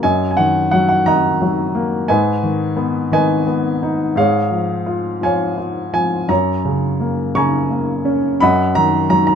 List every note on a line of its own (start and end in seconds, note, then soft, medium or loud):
0.03 2.05 F#2 medium
0.03 1.03 D#5 medium
0.03 0.29 G#5 medium
0.31 0.38 G#5 medium
0.37 1.04 D#3 soft
0.37 0.70 F#5 medium
0.71 1.40 F#3 soft
0.71 0.87 F#5 medium
0.89 1.07 F#5 medium
1.06 2.05 D#3 soft
1.06 2.05 D#5 medium
1.06 2.06 F#5 medium
1.06 2.12 A#5 medium
1.42 2.07 F#3 soft
1.75 2.08 A#3 medium
2.08 4.13 G#2 medium
2.08 3.08 B4 medium
2.08 3.08 D#5 medium
2.08 2.73 G#5 medium
2.43 3.10 D#3 soft
2.77 3.45 B3 medium
3.12 4.13 D#3 medium
3.12 4.13 B4 medium
3.12 4.13 D#5 medium
3.12 4.20 G#5 medium
3.47 4.14 B3 soft
3.83 4.16 D#4 medium
4.16 6.26 G#2 medium
4.16 5.19 G#4 medium
4.16 5.19 C#5 medium
4.16 5.23 F5 medium
4.51 5.20 F3 soft
4.86 5.56 F4 soft
5.21 5.92 F3 soft
5.21 6.27 C#5 soft
5.21 6.27 F5 soft
5.21 5.91 G#5 medium
5.58 6.27 F4 soft
5.94 6.29 F3 soft
5.94 6.31 G#5 medium
6.29 8.38 F#2 medium
6.29 7.33 C#5 medium
6.29 7.35 A#5 medium
6.65 7.33 C#3 soft
7.00 7.69 A#3 soft
7.35 8.38 C#3 soft
7.35 8.39 G#5 medium
7.35 8.38 A#5 medium
7.35 8.45 C#6 medium
7.70 8.39 A#3 soft
8.05 8.40 C#4 medium
8.40 9.35 F#2 medium
8.40 9.35 D#5 medium
8.40 9.35 F#5 medium
8.40 8.78 B5 medium
8.75 9.35 D#3 soft
8.75 9.08 A#5 medium
9.10 9.35 F#3 medium
9.10 9.25 A#5 medium
9.27 9.35 A#5 medium